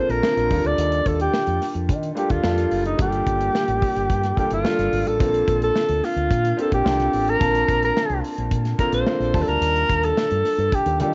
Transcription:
Already playing: A#3 C4 D4 F4 A4 C5
0.09 A#1 A#4, closed hi-hat
0.22 A#3 C4 D4 F4 A#4, snare
0.37 A#1, snare, closed hi-hat
0.50 D#2 G3 A#3 D4 F4 A4, kick, open hi-hat
0.64 D2 D5, closed hi-hat
0.78 D#2, closed hi-hat
0.92 closed hi-hat
1.06 D#2 A4, kick, closed hi-hat
1.20 G4, closed hi-hat
1.33 snare
1.47 F2, closed hi-hat
1.62 snare, open hi-hat
1.75 F2, closed hi-hat
1.89 D#3, kick, closed hi-hat
2.03 closed hi-hat
2.15 G3 A#3 D4 F4 G4 A4, closed hi-hat
2.30 D#2 F4, kick, closed hi-hat
2.43 F2 G3 A#3 D4 F4 A4, snare
2.58 snare, closed hi-hat
2.71 F#1, open hi-hat
2.86 D#4, closed hi-hat
2.98 G1 G3 A#3 D4 F4 A4, kick, closed hi-hat
3.02 G4
3.12 closed hi-hat
3.27 G1, kick, closed hi-hat
3.41 closed hi-hat
3.55 snare
3.68 A1, closed hi-hat
3.82 kick, open hi-hat
3.96 G1, closed hi-hat
4.10 G2, kick, closed hi-hat
4.23 snare, closed hi-hat
4.36 G3 A#3 D4 F4 G4 A4, kick, closed hi-hat
4.51 G1 F4, closed hi-hat
4.64 G3 A#3 D4 F4 A4, snare
4.79 G1, snare, closed hi-hat
4.92 G#1, open hi-hat
5.06 A1 A4, closed hi-hat
5.20 A#1 A#3 C4 D4 F4 A4, kick, closed hi-hat
5.34 closed hi-hat
5.48 A#1, kick, closed hi-hat
5.62 A4, closed hi-hat
5.76 snare
5.89 D2, closed hi-hat
6.04 F4, snare, open hi-hat
6.16 D2, closed hi-hat
6.30 A#2, kick, closed hi-hat
6.45 closed hi-hat
6.57 A#3 C4 D4 F4 G4, closed hi-hat
6.62 A4
6.72 A#1 G4, kick, closed hi-hat
6.84 C2 A#3 C4 D4 F4 A4, snare
7.00 snare, closed hi-hat
7.13 A1, open hi-hat
7.28 A#4, closed hi-hat
7.39 A#1 A#3 C4 D4 F4 A5, kick, closed hi-hat
7.55 closed hi-hat
7.68 A#1, kick, closed hi-hat
7.83 A#4, closed hi-hat
7.97 snare
8.10 C2, closed hi-hat
8.24 open hi-hat
8.38 A#1, closed hi-hat
8.51 A#2, kick, closed hi-hat
8.65 snare, closed hi-hat
8.78 A#3 C4 D4 F4 A4 A#4, kick, closed hi-hat
8.93 A#1 C5, closed hi-hat
9.06 A#3 C4 D4 F4 A4, snare
9.20 A#1, closed hi-hat
9.33 D#2 G3 A#3 D4 F4 A5, kick, open hi-hat
9.43 A4
9.48 D2 A#4, closed hi-hat
9.61 D#2, closed hi-hat
9.76 closed hi-hat
9.89 D#2, kick, closed hi-hat
10.03 A4, closed hi-hat
10.17 snare
10.30 G2, closed hi-hat
10.45 snare, open hi-hat
10.58 G2, closed hi-hat
10.72 G4, kick, closed hi-hat
10.86 D#2, closed hi-hat
11.00 D#3 G3 A#3 D4 F4 G4 A4, closed hi-hat

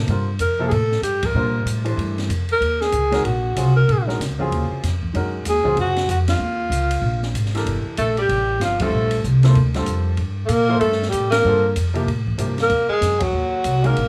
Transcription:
0.08 G2 D3 G3 C4 F4 A#4, ride
0.39 F2 A#4, hi-hat pedal, ride
0.59 C3 F3 A#3 E4 A4
0.67 A2 G#4, ride
0.73 A4
0.92 snare
1.02 G2 G4, hi-hat pedal, ride
1.23 A#4, kick, ride
1.34 A#2 D3 G3 C4 F4 A#4
1.65 A2, hi-hat pedal, ride
1.85 E3 A3 D4 G4 C5, ride
1.97 G2, ride
2.18 snare, ride
2.29 F2, hi-hat pedal, ride
2.49 A#4, ride
2.61 D#2, ride
2.81 G#4, snare
2.92 C#2, hi-hat pedal, ride
3.11 D#3 G#3 C#4 F#4 A#4, snare, ride
3.24 A#1 F#4, ride
3.56 C2 C#3 F#3 C4 F4 G#4, hi-hat pedal, ride
3.76 A#4
3.88 A#1, ride
4.07 D#3 G#3 C#4 F#4 A#4, snare
4.20 C#2, snare, hi-hat pedal, ride
4.39 C#3 F#3 C4 F4 G#4, kick
4.52 D#2, ride
4.71 muted upright bass stroke
4.83 F2, snare, hi-hat pedal, ride
5.03 kick
5.13 F#2 D#3 G#3 C#4 F#4 A#4, ride
5.45 D#2 G#4, hi-hat pedal, ride
5.64 C#3 F#3 C4 F4 G#4, muted upright bass stroke, kick
5.76 F#2 F#4, ride
5.96 snare, ride
6.08 F2 F#4, hi-hat pedal, ride
6.28 F4, snare, ride
6.40 D#2
6.70 C#2, hi-hat pedal, ride
6.91 ride
7.02 A#1
7.23 snare
7.34 G#1, hi-hat pedal, ride
7.46 snare
7.55 E3 D4 G4 A4 A#4, snare, ride
7.66 G1, ride
7.85 muted upright bass stroke
7.97 A#1 A3 A4, hi-hat pedal, ride
8.17 G3 G4, ride
8.29 A1, ride
8.60 G1 F3, snare, hi-hat pedal, ride
8.64 F4
8.80 D3 G3 A3 C4 F4 A4, kick, ride
8.93 A#1
9.11 ride
9.24 C2, hi-hat pedal
9.43 F3 A#3 E4 A4 C5, snare, ride
9.55 D2, ride
9.74 D3 G3 C4 F4 A4, snare, ride
9.86 F2, hi-hat pedal, ride
10.17 G2, ride
10.45 A#2 A3 A4, hi-hat pedal, ride
10.49 A#3 A#4
10.68 F3 A#3 E4 A4 C5
10.79 G2 A3 A4, ride
10.92 snare
11.02 snare
11.09 G3 G4, hi-hat pedal, ride
11.13 A2
11.30 A#3 A#4, snare, ride
11.45 G2 D3 G3 C4 F4 A4
11.76 F2, hi-hat pedal, ride
11.94 C3 F3 A#3 E4 G4, ride
12.07 A2, ride
12.27 kick
12.38 G2 C3 F3 A#3 E4 G4, hi-hat pedal, ride
12.58 A#3, snare, ride
12.62 A#4
12.70 D#2, ride
12.89 G#3 G#4, muted upright bass stroke
13.01 F#2, snare, hi-hat pedal, ride
13.20 F#3 F#4, kick, ride
13.33 D#2
13.64 C2, hi-hat pedal, ride
13.84 D#3 G#3 A#3 C#4 F#4 A#4, ride
13.97 A#1, ride

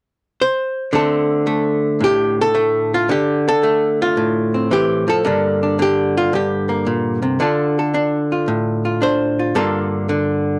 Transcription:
0.42 C5
0.93 D3 A3 C4 A4
1.47 A3
2.00 A2 G4
2.41 A4
2.55 A3
2.94 F4
3.09 D3 G4
3.48 A4
3.63 A3
4.02 F4
4.17 A2
4.54 C4
4.71 E3 G4
5.08 F3 A4
5.25 G2 D3 A#3 D4
5.63 D4
5.79 D3 G4
6.17 F4
6.33 G2 G4
6.69 A#3
6.87 A#2
7.22 C3
7.40 D3 D4 F4 A4
7.79 A4
7.94 D4
8.32 F4
8.48 A2
8.85 F4
9.02 D4 C5
9.39 F4
9.55 G2 D3 A#3 F4 A4
10.09 D3

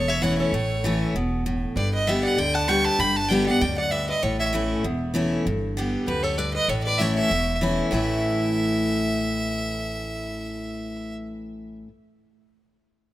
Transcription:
Already playing: E1 E2
0.08 C#5 E5
0.22 E3 A3 C#4 E4 C#5 F#5
0.38 A4 C#5
0.53 A1 A2
0.84 E3 A3 C#4 E4
1.14 E1 B2
1.46 A2
1.76 G1 G2 B4 D5
1.93 B4 D#5
2.07 D3 G3 B3 G4 B4 E5
2.23 D5 F#5
2.37 D2 D3 D5 G5
2.54 F#5 A5
2.68 D3 G3 B3 G4 G5 C#6
2.85 F#5 A5
2.99 G1 G2 G5 B5
3.16 F#5 A5
3.29 D3 G3 B3 G4 D5 G5
3.46 B3 G4 D5 F#5
3.61 D2 F#2 D5 G5
3.78 D5 F#5
3.91 G2 B4 E5
4.09 B4 D#5
4.23 A1 A2 A4 C#5
4.39 C#5 E5
4.53 E3 A3 C#4 E4
4.84 E1 E2
5.14 E3 A3 C#4 E4
5.46 G1 G2
5.77 D3 G3 B3 G4
6.07 D2 F#2 G4 B4
6.23 A4 C#5
6.37 G2 B4 D5
6.54 B4 D#5
6.68 A1 A2 A4 C#5
6.84 B4 D5
6.98 E3 A3 C#4 E4 C#5 E5
7.15 C#5 E5
7.30 E1 E2
7.61 E3 A3 C#4 E4
7.91 A1 A2 E3 A3 C#4 E4 C#5 E5

